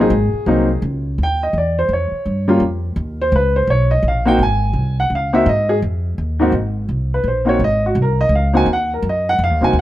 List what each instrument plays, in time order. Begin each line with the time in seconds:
0.00 upright piano A#3 C4 D#4 G#4
0.10 upright bass G#1
0.33 muted upright bass stroke
0.46 upright bass C2, upright piano F#3 A#3 C4 D#4
0.82 upright bass C#2
1.18 upright bass D#2
1.23 upright piano G5
1.43 upright piano D#5
1.53 upright bass E2
1.58 upright piano D5
1.79 upright piano C5
1.89 upright bass F2
1.93 upright piano C#5
2.11 muted upright bass stroke
2.25 upright bass G2
2.48 upright piano G3 A#3 C#4 F4
2.60 upright bass F2
2.96 upright bass D#2
3.21 upright piano C5
3.32 upright bass C#2, upright piano B4
3.56 upright piano C5
3.67 upright bass B1, upright piano C#5
3.91 upright piano D#5
4.03 upright bass A#1
4.08 upright piano F5
4.25 upright piano A#3 C4 D#4 F#4 G5
4.39 upright bass G#1
4.43 upright piano G#5
4.73 upright bass C2
5.00 upright piano F#5
5.10 upright bass C#2
5.15 upright piano F5
5.33 upright piano A#3 C4 D#4 F#4 E5
5.46 upright bass G#2, upright piano D#5
5.69 upright piano G#4
5.82 upright bass F2
6.18 upright bass D#2
6.39 upright piano G#2 A#3 C4 D#4 F#4
6.52 upright bass G#1
6.89 upright bass C2
7.14 upright piano B4
7.24 upright bass A#1
7.28 upright piano C5
7.45 upright piano A#3 C4 D#4 F#4
7.49 upright piano C#5
7.59 upright bass G#1
7.64 upright piano D#5
7.86 upright piano F#4
7.95 upright bass C2
8.02 upright piano A#4
8.21 upright piano D#5
8.29 upright bass C#2
8.35 upright piano F5
8.53 upright piano A#3 C4 D#4 F#4 G#5
8.66 upright bass D#2
8.73 upright piano F#5
8.94 upright piano A#4
9.02 upright bass F#2
9.09 upright piano D#5
9.29 upright piano F#5
9.39 upright bass F2
9.44 upright piano F5
9.50 upright bass D#2
9.61 upright bass C2, upright piano A#3 C4 D#4 F#4 G#5
9.73 upright bass D#2